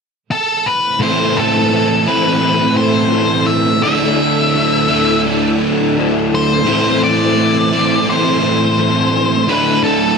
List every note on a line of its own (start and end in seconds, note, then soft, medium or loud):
0.32 0.67 A4 medium
0.66 1.02 B4 medium
0.99 2.06 A2 medium
0.99 3.81 A2 medium
0.99 1.70 E3 medium
0.99 3.81 E3 medium
0.99 1.71 A3 medium
0.99 3.81 C4 medium
0.99 1.71 C4 medium
0.99 1.73 E4 medium
0.99 3.81 A4 medium
0.99 1.38 C5 medium
1.37 2.09 A4 medium
1.70 2.41 E3 medium
1.70 2.09 A3 medium
1.70 2.07 C4 medium
1.70 2.05 E4 medium
2.06 3.82 E3 medium
2.06 2.42 A3 medium
2.06 2.42 C4 medium
2.06 2.44 E4 medium
2.06 2.77 B4 medium
2.10 3.83 A2 medium
2.41 3.11 E3 medium
2.41 2.80 A3 medium
2.41 2.78 C4 medium
2.41 2.77 E4 medium
2.77 3.12 A3 medium
2.77 3.13 C4 medium
2.77 3.15 E4 medium
2.77 3.50 C5 medium
3.12 3.82 E3 medium
3.12 3.83 A3 medium
3.12 3.82 C4 medium
3.12 3.85 E4 medium
3.46 3.82 E5 loud
3.83 6.63 D2 medium
3.83 4.53 D3 medium
3.83 6.64 D3 medium
3.83 4.55 A3 medium
3.83 4.55 D4 medium
3.83 6.63 E4 medium
3.83 4.57 E4 medium
3.83 6.64 A4 medium
3.83 5.21 E5 medium
4.54 5.24 D3 medium
4.54 4.92 A3 medium
4.54 4.90 D4 medium
4.54 4.90 E4 medium
4.90 6.65 D3 medium
4.90 5.26 A3 medium
4.90 5.26 D4 medium
4.90 5.28 E4 medium
5.25 5.95 D3 medium
5.25 5.64 A3 medium
5.25 5.62 D4 medium
5.25 5.60 E4 medium
5.61 5.97 A3 medium
5.61 5.97 D4 medium
5.61 5.98 E4 medium
5.96 6.64 D3 medium
5.96 6.68 A3 medium
5.96 6.65 D4 medium
5.96 6.69 E4 medium
6.35 7.03 C5 medium
6.67 7.72 A2 medium
6.67 9.47 A2 medium
6.67 7.35 E3 medium
6.67 9.46 E3 medium
6.67 7.37 A3 loud
6.67 7.37 C4 medium
6.67 9.47 C4 medium
6.67 7.38 E4 medium
6.67 9.47 C5 medium
7.04 8.10 D5 medium
7.36 8.05 E3 medium
7.36 7.74 A3 medium
7.36 7.72 C4 medium
7.36 7.71 E4 medium
7.71 9.46 E3 medium
7.71 8.07 A3 medium
7.71 8.06 C4 medium
7.71 8.08 E4 medium
7.76 9.48 A2 medium
8.06 8.77 E3 medium
8.06 8.45 A3 medium
8.06 8.43 C4 medium
8.06 8.42 E4 medium
8.10 9.54 C5 medium
8.43 8.79 A3 medium
8.43 8.79 C4 medium
8.43 8.80 E4 medium
8.78 9.48 E3 medium
8.78 9.49 A3 medium
8.78 9.47 C4 medium
8.78 9.50 E4 medium
9.48 10.18 D2 medium
9.48 10.17 D3 medium
9.48 10.18 D3 medium
9.48 10.18 A3 medium
9.48 10.18 D4 loud
9.48 10.18 E4 medium
9.48 10.18 A4 medium
9.48 9.83 B4 medium
9.84 10.18 A4 medium